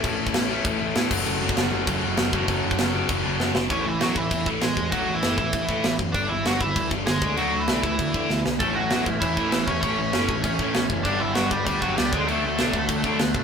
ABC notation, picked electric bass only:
X:1
M:4/4
L:1/8
Q:1/4=196
K:A
V:1 name="Picked electric bass" clef=bass
A,,, A,,, A,,,2 A,,, A,,, A,, F,,, | F,,, F,,, F,,, F,,, F,,, F,,, F,,, F,,, | F,,, F,,, F,,,2 F,,, F,,, F,, F,,, | A,,, A,,, A,,,2 E,, A,,, A,,, E,, |
A,,, A,,, F,,, A,,, A,,, A,, A,,, F,, | =G,,, G,,, G,,,2 D,, G,,, G,,, D,, | D,, D,, B,,, D,, D,, D, D,, B,,, | A,,, A,,, A,,,2 E,, A,,, A,,, E,, |
A,,, A,,, F,,, A,,, A,,, A,, A,,, F,,, | =G,,, G,,, G,,,2 D,, G,,, C,, D,, | D,, D,, B,,, D,, D,, D, D,, B,, |]